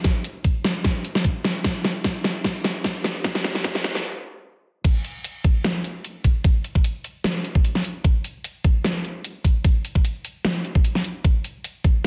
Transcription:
0.04 kick medium
0.04 snare medium
0.04 closed hi-hat medium
0.24 closed hi-hat medium
0.44 kick medium
0.44 closed hi-hat medium
0.65 snare medium
0.65 closed hi-hat medium
0.84 kick loud
0.84 snare medium
0.84 closed hi-hat medium
1.05 closed hi-hat medium
1.15 snare medium
1.24 kick medium
1.24 closed hi-hat medium
1.45 snare medium
1.45 closed hi-hat medium
1.64 kick loud
1.64 snare medium
1.64 closed hi-hat medium
1.85 snare medium
1.85 closed hi-hat medium
2.04 kick loud
2.04 snare medium
2.04 closed hi-hat medium
2.24 snare medium
2.24 closed hi-hat medium
2.44 kick loud
2.44 snare medium
2.44 closed hi-hat medium
2.64 snare medium
2.64 closed hi-hat medium
2.84 kick loud
2.84 snare medium
2.84 closed hi-hat medium
3.04 snare medium
3.04 closed hi-hat medium
3.24 kick loud
3.24 snare medium
3.24 closed hi-hat medium
3.35 snare medium
3.44 snare medium
3.44 closed hi-hat medium
3.55 snare medium
3.64 kick loud
3.64 snare loud
3.64 closed hi-hat medium
3.75 snare medium
3.84 snare loud
3.84 closed hi-hat medium
3.95 snare medium
4.84 kick loud
4.84 closed hi-hat medium
4.84 crash loud
5.05 closed hi-hat medium
5.24 closed hi-hat medium
5.44 kick loud
5.44 closed hi-hat medium
5.64 snare loud
5.64 closed hi-hat medium
5.84 closed hi-hat medium
6.04 closed hi-hat medium
6.24 kick medium
6.24 closed hi-hat medium
6.44 kick loud
6.44 closed hi-hat medium
6.64 closed hi-hat medium
6.75 kick medium
6.84 closed hi-hat medium
7.04 closed hi-hat medium
7.24 snare loud
7.24 closed hi-hat medium
7.45 closed hi-hat medium
7.55 kick loud
7.64 closed hi-hat medium
7.75 snare soft
7.84 closed hi-hat medium
8.04 kick loud
8.04 closed hi-hat medium
8.24 closed hi-hat medium
8.44 closed hi-hat medium
8.64 kick loud
8.64 closed hi-hat medium
8.85 snare loud
8.85 closed hi-hat medium
9.05 closed hi-hat medium
9.25 closed hi-hat medium
9.44 kick medium
9.44 closed hi-hat medium
9.64 kick loud
9.64 closed hi-hat medium
9.85 closed hi-hat medium
9.95 kick medium
10.05 closed hi-hat medium
10.25 closed hi-hat medium
10.45 snare loud
10.45 closed hi-hat medium
10.65 closed hi-hat medium
10.75 kick loud
10.85 closed hi-hat medium
10.95 snare soft
11.04 closed hi-hat medium
11.24 kick loud
11.24 closed hi-hat medium
11.44 closed hi-hat soft
11.64 closed hi-hat medium
11.84 kick loud
11.84 closed hi-hat medium

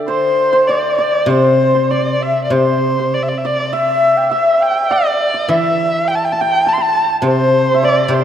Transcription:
0.00 0.98 D3 medium
0.00 0.69 D5 medium
0.00 1.45 E5 soft
0.00 1.14 G5 medium
0.08 0.52 C5 medium
0.08 0.68 C5 medium
0.12 0.71 C5 medium
0.53 1.29 C5 medium
0.67 0.97 D5 medium
0.67 0.98 D5 medium
0.67 1.32 D5 medium
0.98 1.30 D5 medium
0.98 1.90 D5 medium
1.26 2.49 C3 medium
1.26 1.92 C5 medium
1.26 1.74 C5 medium
1.30 1.92 C5 medium
1.75 2.52 C5 medium
1.91 2.22 D5 medium
1.91 3.44 D5 medium
1.91 2.24 D5 medium
2.21 2.44 E5 medium
2.21 2.43 E5 medium
2.44 2.53 D5 soft
2.50 4.32 C3 medium
2.50 3.13 C5 medium
2.50 3.15 C5 medium
2.50 2.99 C5 medium
2.99 5.63 C5 soft
3.14 3.24 D5 medium
3.23 3.30 E5 medium
3.29 3.39 D5 medium
3.37 3.47 E5 medium
3.44 3.71 D5 medium
3.44 4.90 D5 medium
3.44 3.75 D5 medium
3.72 4.19 E5 medium
3.72 4.31 E5 medium
4.17 4.34 G5 medium
4.31 5.49 E5 medium
4.31 4.64 E5 medium
4.31 4.62 E5 medium
4.61 4.81 G5 medium
4.61 4.93 G5 medium
4.82 4.91 E5 soft
4.90 5.46 D5 medium
4.90 5.34 D5 medium
4.90 5.50 D5 medium
5.34 7.80 D5 medium
5.47 7.23 E3 medium
5.47 6.03 E5 medium
5.47 6.09 E5 medium
5.47 7.74 E5 medium
6.07 6.16 G5 medium
6.15 6.26 A5 medium
6.25 6.34 G5 medium
6.32 6.42 A5 medium
6.32 6.66 A5 medium
6.37 6.67 G5 medium
6.37 6.70 G5 medium
6.41 8.24 G5 medium
6.65 6.79 A5 medium
6.65 6.77 A5 medium
6.65 6.75 A5 medium
6.74 6.84 C6 medium
6.78 8.24 A5 medium
6.78 7.07 A5 medium
6.83 7.11 A5 medium
7.22 8.07 C3 medium
7.22 8.10 C5 medium
7.22 7.78 C5 medium
7.27 7.86 C5 medium
7.74 8.24 E5 soft
7.82 8.13 D5 medium
7.82 8.24 D5 medium
7.82 8.03 D5 medium
8.03 8.15 D5 medium
8.08 8.24 C3 medium
8.08 8.19 C5 medium
8.08 8.24 C5 medium
8.14 8.24 C5 medium
8.19 8.24 C5 soft

